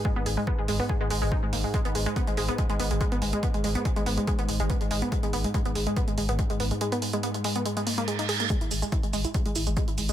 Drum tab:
HH |--o---o---o---o-|xxoxxxoxxxoxxxox|xxoxxxoxxxoxxxox|xxoxxxoxxxoxxxox|
SH |----------------|----------------|----------------|----------------|
BD |o---o---o---o---|o---o---o---o---|o---o---o---o---|o---o---o---o---|

HH |xxoxxxoxxxoxxxox|xxoxxxoxxxoxxxox|
SH |----------------|x-xxx-xxx-xxx-xx|
BD |----------------|o---o---o---o---|